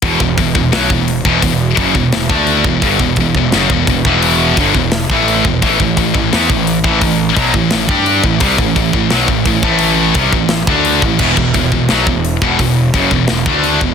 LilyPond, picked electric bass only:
\new Staff \with { instrumentName = "Picked electric bass" } { \clef bass \time 4/4 \key e \minor \tempo 4 = 86 e,,16 e,,16 e,,16 e,,16 b,,16 e,,8 e,,16 e,,8 fis,,16 e,,16 e,,16 d,8 e,,16 | g,,16 e,,16 e,,16 e,,16 fis,,16 e,,16 e,,16 e,,8. g,,16 e,,8 a,,8 e,,16 | a,,16 a,,16 a,,16 a,,16 e,16 a,,8 a,,16 a,,8 b,,16 a,,16 a,,16 g,8 a,,16 | c,16 a,,16 a,,16 a,,16 b,,16 a,,16 a,,16 a,,8. c,16 a,,8 d,8 a,,16 |
e,,16 e,,16 e,,16 e,,16 b,,16 e,,8 e,,16 e,,8 fis,,16 e,,16 e,,16 d,8 e,,16 | }